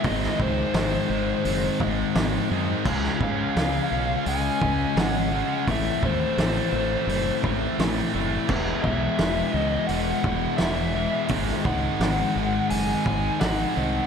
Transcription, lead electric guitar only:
0.05 0.40 D#5 medium
0.42 1.77 C5 medium
3.23 4.24 F5 loud
4.28 4.99 G#5 loud
4.99 5.70 F#5 medium
5.71 6.05 E5 loud
6.06 7.41 C5 medium
8.83 9.56 E5 loud
9.56 9.92 D#5 loud
9.87 10.54 F#5 loud
10.57 11.25 E5 medium
11.66 12.69 F#5 loud
12.70 13.40 G#5 loud
13.40 14.07 F#5 medium

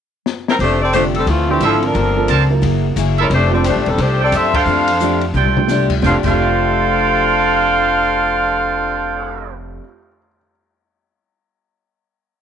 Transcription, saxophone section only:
0.49 0.54 G3 medium
0.49 0.55 C4 medium
0.49 0.55 E4 medium
0.49 0.55 A#4 medium
0.61 0.81 A3 medium
0.61 0.80 D4 medium
0.61 0.80 G4 medium
0.61 0.80 C5 medium
0.82 0.93 C4 medium
0.82 0.93 G4 medium
0.82 0.93 A4 medium
0.82 0.93 D5 medium
0.94 1.04 A3 medium
0.94 1.04 D4 medium
0.94 1.03 G4 medium
0.94 1.04 C5 medium
1.16 1.27 G3 medium
1.16 1.26 C4 medium
1.16 1.27 D4 medium
1.16 1.27 A4 medium
1.27 1.49 E3 medium
1.27 1.49 A3 medium
1.27 1.49 C4 medium
1.27 1.49 F4 medium
1.50 1.61 E3 medium
1.50 1.61 A3 medium
1.50 1.61 C4 medium
1.50 1.61 G4 medium
1.63 1.82 F3 medium
1.63 1.82 C4 medium
1.63 1.83 E4 medium
1.63 1.82 A4 medium
1.84 2.52 F3 medium
1.84 2.51 D4 medium
1.84 2.51 A4 medium
1.84 2.51 A#4 medium
3.20 3.31 G#3 medium
3.20 3.31 C#4 medium
3.20 3.31 E4 medium
3.20 3.31 A#4 medium
3.33 3.52 A3 medium
3.33 3.52 D4 medium
3.33 3.52 G4 medium
3.33 3.52 C5 medium
3.53 3.65 C4 medium
3.53 3.65 G4 medium
3.53 3.65 A4 medium
3.53 3.65 D5 medium
3.66 3.86 A3 medium
3.66 3.86 D4 medium
3.66 3.86 G4 medium
3.66 3.86 C5 medium
3.88 4.00 G3 medium
3.88 4.00 C4 medium
3.88 4.00 D4 medium
3.88 4.00 A4 medium
4.00 4.21 A3 medium
4.00 4.21 D4 medium
4.00 4.22 G4 medium
4.00 4.21 C5 medium
4.23 4.34 C4 medium
4.23 4.34 G4 medium
4.23 4.34 A4 medium
4.23 4.33 D5 medium
4.35 4.55 C4 medium
4.35 4.55 F4 medium
4.35 4.54 A4 medium
4.35 4.55 E5 medium
4.55 5.23 D4 medium
4.55 5.23 A4 medium
4.55 5.23 C5 medium
4.55 5.23 F5 medium
6.04 6.16 D4 medium
6.04 6.15 A4 medium
6.04 6.16 C5 medium
6.04 6.16 F5 medium
6.27 9.51 D4 medium
6.27 9.51 A4 medium
6.27 9.51 C5 medium
6.27 9.51 F5 medium

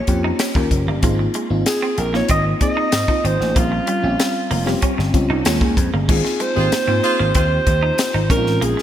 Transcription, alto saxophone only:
0.00 0.40 C#5 medium
1.67 2.01 G#4 medium
1.99 2.14 A#4 medium
2.16 2.30 C#5 loud
2.31 2.45 D#5 loud
2.62 3.28 D#5 loud
3.26 3.60 C5 loud
3.58 4.83 F4 medium
6.11 6.43 G#4 medium
6.42 7.35 C5 loud
7.36 8.26 C5 loud
8.31 8.65 A#4 loud
8.63 8.82 G#4 loud

